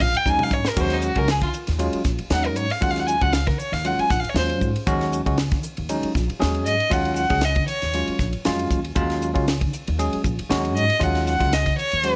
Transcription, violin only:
0, 0, Header, 1, 2, 480
1, 0, Start_track
1, 0, Key_signature, -6, "minor"
1, 0, Tempo, 511945
1, 727, Time_signature, 4, 2, 24, 8
1, 11400, End_track
2, 0, Start_track
2, 0, Title_t, "Violin"
2, 0, Program_c, 0, 40
2, 15, Note_on_c, 0, 77, 97
2, 153, Note_on_c, 0, 79, 85
2, 167, Note_off_c, 0, 77, 0
2, 271, Note_on_c, 0, 80, 99
2, 285, Note_off_c, 0, 79, 0
2, 401, Note_on_c, 0, 77, 90
2, 415, Note_off_c, 0, 80, 0
2, 501, Note_on_c, 0, 73, 80
2, 515, Note_off_c, 0, 77, 0
2, 640, Note_on_c, 0, 70, 72
2, 654, Note_off_c, 0, 73, 0
2, 753, Note_on_c, 0, 72, 83
2, 767, Note_off_c, 0, 70, 0
2, 874, Note_on_c, 0, 63, 50
2, 888, Note_off_c, 0, 72, 0
2, 972, Note_on_c, 0, 66, 82
2, 986, Note_off_c, 0, 63, 0
2, 1105, Note_on_c, 0, 70, 96
2, 1119, Note_off_c, 0, 66, 0
2, 1220, Note_on_c, 0, 68, 69
2, 1234, Note_off_c, 0, 70, 0
2, 1329, Note_off_c, 0, 68, 0
2, 1334, Note_on_c, 0, 65, 63
2, 1401, Note_off_c, 0, 65, 0
2, 2181, Note_on_c, 0, 78, 77
2, 2308, Note_on_c, 0, 70, 60
2, 2322, Note_off_c, 0, 78, 0
2, 2400, Note_on_c, 0, 73, 85
2, 2414, Note_off_c, 0, 70, 0
2, 2542, Note_on_c, 0, 77, 76
2, 2556, Note_off_c, 0, 73, 0
2, 2643, Note_on_c, 0, 78, 92
2, 2657, Note_off_c, 0, 77, 0
2, 2727, Note_on_c, 0, 77, 71
2, 2741, Note_off_c, 0, 78, 0
2, 2807, Note_on_c, 0, 78, 77
2, 2821, Note_off_c, 0, 77, 0
2, 2875, Note_on_c, 0, 80, 93
2, 2889, Note_off_c, 0, 78, 0
2, 3011, Note_on_c, 0, 78, 85
2, 3025, Note_off_c, 0, 80, 0
2, 3122, Note_on_c, 0, 77, 78
2, 3136, Note_off_c, 0, 78, 0
2, 3250, Note_on_c, 0, 70, 63
2, 3265, Note_off_c, 0, 77, 0
2, 3357, Note_on_c, 0, 73, 86
2, 3371, Note_off_c, 0, 70, 0
2, 3496, Note_on_c, 0, 77, 82
2, 3510, Note_off_c, 0, 73, 0
2, 3615, Note_on_c, 0, 78, 76
2, 3629, Note_off_c, 0, 77, 0
2, 3743, Note_on_c, 0, 80, 95
2, 3757, Note_off_c, 0, 78, 0
2, 3844, Note_on_c, 0, 78, 82
2, 3858, Note_off_c, 0, 80, 0
2, 3937, Note_on_c, 0, 77, 77
2, 3951, Note_off_c, 0, 78, 0
2, 4023, Note_on_c, 0, 73, 78
2, 4037, Note_off_c, 0, 77, 0
2, 4090, Note_off_c, 0, 73, 0
2, 4095, Note_on_c, 0, 72, 90
2, 4236, Note_off_c, 0, 72, 0
2, 6248, Note_on_c, 0, 75, 87
2, 6491, Note_on_c, 0, 78, 77
2, 6505, Note_off_c, 0, 75, 0
2, 6708, Note_off_c, 0, 78, 0
2, 6714, Note_on_c, 0, 78, 92
2, 6982, Note_on_c, 0, 75, 82
2, 6996, Note_off_c, 0, 78, 0
2, 7197, Note_off_c, 0, 75, 0
2, 7203, Note_on_c, 0, 73, 90
2, 7650, Note_off_c, 0, 73, 0
2, 10091, Note_on_c, 0, 75, 86
2, 10342, Note_on_c, 0, 78, 74
2, 10356, Note_off_c, 0, 75, 0
2, 10563, Note_off_c, 0, 78, 0
2, 10569, Note_on_c, 0, 78, 91
2, 10814, Note_on_c, 0, 75, 82
2, 10828, Note_off_c, 0, 78, 0
2, 11043, Note_off_c, 0, 75, 0
2, 11049, Note_on_c, 0, 73, 95
2, 11400, Note_off_c, 0, 73, 0
2, 11400, End_track
0, 0, End_of_file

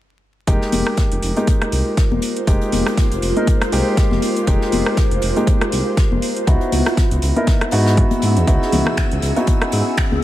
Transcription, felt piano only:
0, 0, Header, 1, 2, 480
1, 0, Start_track
1, 0, Tempo, 500000
1, 456, Time_signature, 4, 2, 24, 8
1, 9828, End_track
2, 0, Start_track
2, 0, Title_t, "Felt piano"
2, 0, Program_c, 0, 0
2, 453, Note_on_c, 0, 56, 90
2, 456, Note_on_c, 0, 58, 88
2, 457, Note_on_c, 0, 63, 82
2, 459, Note_on_c, 0, 67, 102
2, 1278, Note_off_c, 0, 56, 0
2, 1279, Note_off_c, 0, 58, 0
2, 1280, Note_off_c, 0, 63, 0
2, 1281, Note_off_c, 0, 67, 0
2, 1309, Note_on_c, 0, 56, 80
2, 1311, Note_on_c, 0, 58, 70
2, 1313, Note_on_c, 0, 63, 75
2, 1315, Note_on_c, 0, 67, 84
2, 2350, Note_off_c, 0, 56, 0
2, 2351, Note_off_c, 0, 58, 0
2, 2352, Note_off_c, 0, 63, 0
2, 2353, Note_off_c, 0, 67, 0
2, 2373, Note_on_c, 0, 56, 86
2, 2375, Note_on_c, 0, 58, 74
2, 2376, Note_on_c, 0, 63, 74
2, 2379, Note_on_c, 0, 67, 92
2, 3198, Note_off_c, 0, 56, 0
2, 3199, Note_off_c, 0, 58, 0
2, 3199, Note_off_c, 0, 63, 0
2, 3200, Note_off_c, 0, 67, 0
2, 3230, Note_on_c, 0, 56, 77
2, 3230, Note_on_c, 0, 58, 75
2, 3232, Note_on_c, 0, 63, 74
2, 3233, Note_on_c, 0, 70, 91
2, 3550, Note_off_c, 0, 56, 0
2, 3550, Note_off_c, 0, 58, 0
2, 3551, Note_off_c, 0, 63, 0
2, 3552, Note_off_c, 0, 70, 0
2, 3572, Note_on_c, 0, 56, 92
2, 3574, Note_on_c, 0, 58, 85
2, 3576, Note_on_c, 0, 63, 84
2, 3578, Note_on_c, 0, 67, 102
2, 4269, Note_off_c, 0, 56, 0
2, 4270, Note_off_c, 0, 58, 0
2, 4271, Note_off_c, 0, 63, 0
2, 4272, Note_off_c, 0, 67, 0
2, 4292, Note_on_c, 0, 56, 95
2, 4293, Note_on_c, 0, 58, 82
2, 4296, Note_on_c, 0, 63, 84
2, 4298, Note_on_c, 0, 67, 104
2, 5117, Note_off_c, 0, 56, 0
2, 5118, Note_off_c, 0, 58, 0
2, 5119, Note_off_c, 0, 63, 0
2, 5120, Note_off_c, 0, 67, 0
2, 5147, Note_on_c, 0, 56, 81
2, 5149, Note_on_c, 0, 58, 68
2, 5151, Note_on_c, 0, 63, 68
2, 5153, Note_on_c, 0, 67, 86
2, 6189, Note_off_c, 0, 56, 0
2, 6190, Note_off_c, 0, 58, 0
2, 6191, Note_off_c, 0, 63, 0
2, 6192, Note_off_c, 0, 67, 0
2, 6211, Note_on_c, 0, 59, 82
2, 6213, Note_on_c, 0, 63, 75
2, 6216, Note_on_c, 0, 64, 72
2, 6217, Note_on_c, 0, 66, 93
2, 7037, Note_off_c, 0, 59, 0
2, 7038, Note_off_c, 0, 63, 0
2, 7039, Note_off_c, 0, 64, 0
2, 7039, Note_off_c, 0, 66, 0
2, 7069, Note_on_c, 0, 59, 77
2, 7070, Note_on_c, 0, 63, 71
2, 7071, Note_on_c, 0, 64, 72
2, 7072, Note_on_c, 0, 70, 85
2, 7390, Note_off_c, 0, 59, 0
2, 7390, Note_off_c, 0, 63, 0
2, 7391, Note_off_c, 0, 64, 0
2, 7391, Note_off_c, 0, 70, 0
2, 7412, Note_on_c, 0, 59, 90
2, 7415, Note_on_c, 0, 63, 85
2, 7416, Note_on_c, 0, 64, 79
2, 7418, Note_on_c, 0, 66, 100
2, 8109, Note_off_c, 0, 59, 0
2, 8110, Note_off_c, 0, 63, 0
2, 8111, Note_off_c, 0, 64, 0
2, 8112, Note_off_c, 0, 66, 0
2, 8134, Note_on_c, 0, 59, 90
2, 8136, Note_on_c, 0, 63, 87
2, 8138, Note_on_c, 0, 64, 85
2, 8140, Note_on_c, 0, 66, 99
2, 8958, Note_off_c, 0, 59, 0
2, 8959, Note_off_c, 0, 63, 0
2, 8960, Note_off_c, 0, 64, 0
2, 8961, Note_off_c, 0, 66, 0
2, 8989, Note_on_c, 0, 59, 78
2, 8991, Note_on_c, 0, 63, 71
2, 8992, Note_on_c, 0, 64, 73
2, 8995, Note_on_c, 0, 66, 85
2, 9828, Note_off_c, 0, 59, 0
2, 9828, Note_off_c, 0, 63, 0
2, 9828, Note_off_c, 0, 64, 0
2, 9828, Note_off_c, 0, 66, 0
2, 9828, End_track
0, 0, End_of_file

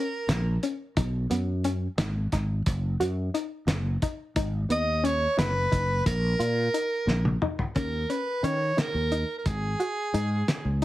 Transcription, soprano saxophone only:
0, 0, Header, 1, 2, 480
1, 0, Start_track
1, 0, Tempo, 679502
1, 685, Time_signature, 5, 3, 24, 8
1, 7663, End_track
2, 0, Start_track
2, 0, Title_t, "Soprano saxophone"
2, 0, Program_c, 0, 64
2, 0, Note_on_c, 0, 70, 91
2, 447, Note_off_c, 0, 70, 0
2, 3329, Note_on_c, 0, 75, 100
2, 3567, Note_on_c, 0, 73, 102
2, 3578, Note_off_c, 0, 75, 0
2, 3798, Note_off_c, 0, 73, 0
2, 3802, Note_on_c, 0, 71, 95
2, 4253, Note_off_c, 0, 71, 0
2, 4284, Note_on_c, 0, 70, 91
2, 5214, Note_off_c, 0, 70, 0
2, 5476, Note_on_c, 0, 70, 81
2, 5721, Note_on_c, 0, 71, 79
2, 5732, Note_off_c, 0, 70, 0
2, 5962, Note_on_c, 0, 73, 91
2, 5973, Note_off_c, 0, 71, 0
2, 6206, Note_on_c, 0, 70, 91
2, 6217, Note_off_c, 0, 73, 0
2, 6622, Note_off_c, 0, 70, 0
2, 6626, Note_on_c, 0, 70, 55
2, 6682, Note_on_c, 0, 68, 76
2, 6693, Note_off_c, 0, 70, 0
2, 7643, Note_off_c, 0, 68, 0
2, 7663, End_track
0, 0, End_of_file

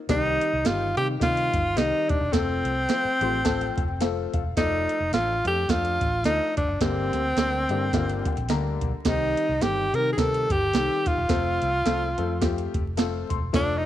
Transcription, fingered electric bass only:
0, 0, Header, 1, 3, 480
1, 0, Start_track
1, 0, Tempo, 560224
1, 77, Time_signature, 4, 2, 24, 8
1, 11872, End_track
2, 0, Start_track
2, 0, Title_t, "Fingered electric bass"
2, 0, Program_c, 0, 33
2, 76, Note_on_c, 0, 36, 101
2, 316, Note_off_c, 0, 36, 0
2, 455, Note_on_c, 0, 36, 81
2, 542, Note_off_c, 0, 36, 0
2, 555, Note_on_c, 0, 31, 99
2, 795, Note_off_c, 0, 31, 0
2, 829, Note_on_c, 0, 48, 99
2, 1004, Note_off_c, 0, 48, 0
2, 1038, Note_on_c, 0, 48, 110
2, 1277, Note_off_c, 0, 48, 0
2, 1314, Note_on_c, 0, 31, 97
2, 1487, Note_off_c, 0, 31, 0
2, 1507, Note_on_c, 0, 36, 86
2, 1631, Note_off_c, 0, 36, 0
2, 1797, Note_on_c, 0, 27, 94
2, 1882, Note_off_c, 0, 27, 0
2, 1889, Note_on_c, 0, 28, 93
2, 1978, Note_off_c, 0, 28, 0
2, 1997, Note_on_c, 0, 29, 108
2, 2236, Note_off_c, 0, 29, 0
2, 2267, Note_on_c, 0, 36, 88
2, 2442, Note_off_c, 0, 36, 0
2, 2749, Note_on_c, 0, 33, 95
2, 3163, Note_off_c, 0, 33, 0
2, 3233, Note_on_c, 0, 29, 86
2, 3645, Note_off_c, 0, 29, 0
2, 3715, Note_on_c, 0, 28, 84
2, 3887, Note_off_c, 0, 28, 0
2, 3913, Note_on_c, 0, 29, 104
2, 4153, Note_off_c, 0, 29, 0
2, 4285, Note_on_c, 0, 29, 85
2, 4375, Note_off_c, 0, 29, 0
2, 4388, Note_on_c, 0, 33, 93
2, 4631, Note_off_c, 0, 33, 0
2, 4667, Note_on_c, 0, 41, 108
2, 4843, Note_off_c, 0, 41, 0
2, 4871, Note_on_c, 0, 41, 111
2, 5112, Note_off_c, 0, 41, 0
2, 5151, Note_on_c, 0, 33, 82
2, 5325, Note_off_c, 0, 33, 0
2, 5346, Note_on_c, 0, 38, 92
2, 5470, Note_off_c, 0, 38, 0
2, 5632, Note_on_c, 0, 29, 93
2, 5720, Note_off_c, 0, 29, 0
2, 5724, Note_on_c, 0, 30, 92
2, 5815, Note_off_c, 0, 30, 0
2, 5831, Note_on_c, 0, 31, 111
2, 6072, Note_off_c, 0, 31, 0
2, 6106, Note_on_c, 0, 38, 93
2, 6282, Note_off_c, 0, 38, 0
2, 6312, Note_on_c, 0, 38, 83
2, 6553, Note_off_c, 0, 38, 0
2, 6590, Note_on_c, 0, 43, 96
2, 6765, Note_off_c, 0, 43, 0
2, 6794, Note_on_c, 0, 31, 100
2, 7035, Note_off_c, 0, 31, 0
2, 7170, Note_on_c, 0, 34, 78
2, 7259, Note_off_c, 0, 34, 0
2, 7273, Note_on_c, 0, 38, 90
2, 7514, Note_off_c, 0, 38, 0
2, 7554, Note_on_c, 0, 35, 96
2, 7641, Note_off_c, 0, 35, 0
2, 7752, Note_on_c, 0, 36, 104
2, 7994, Note_off_c, 0, 36, 0
2, 8131, Note_on_c, 0, 36, 90
2, 8220, Note_off_c, 0, 36, 0
2, 8230, Note_on_c, 0, 31, 92
2, 8473, Note_off_c, 0, 31, 0
2, 8510, Note_on_c, 0, 48, 96
2, 8686, Note_off_c, 0, 48, 0
2, 8718, Note_on_c, 0, 48, 107
2, 8958, Note_off_c, 0, 48, 0
2, 8997, Note_on_c, 0, 31, 92
2, 9170, Note_off_c, 0, 31, 0
2, 9191, Note_on_c, 0, 36, 98
2, 9315, Note_off_c, 0, 36, 0
2, 9476, Note_on_c, 0, 27, 89
2, 9564, Note_off_c, 0, 27, 0
2, 9576, Note_on_c, 0, 28, 93
2, 9664, Note_off_c, 0, 28, 0
2, 9676, Note_on_c, 0, 29, 109
2, 9917, Note_off_c, 0, 29, 0
2, 9958, Note_on_c, 0, 36, 99
2, 10131, Note_off_c, 0, 36, 0
2, 10158, Note_on_c, 0, 36, 85
2, 10399, Note_off_c, 0, 36, 0
2, 10437, Note_on_c, 0, 41, 94
2, 10850, Note_off_c, 0, 41, 0
2, 10917, Note_on_c, 0, 29, 89
2, 11330, Note_off_c, 0, 29, 0
2, 11398, Note_on_c, 0, 28, 96
2, 11572, Note_off_c, 0, 28, 0
2, 11600, Note_on_c, 0, 29, 113
2, 11840, Note_off_c, 0, 29, 0
2, 11872, End_track
3, 0, Start_track
3, 0, Title_t, "Muted fingered electric bass strokes"
3, 2611, Note_on_c, 9, 29, 50
3, 2697, Note_off_c, 9, 29, 0
3, 7073, Note_on_c, 9, 29, 48
3, 7159, Note_off_c, 9, 29, 0
3, 11872, End_track
0, 0, End_of_file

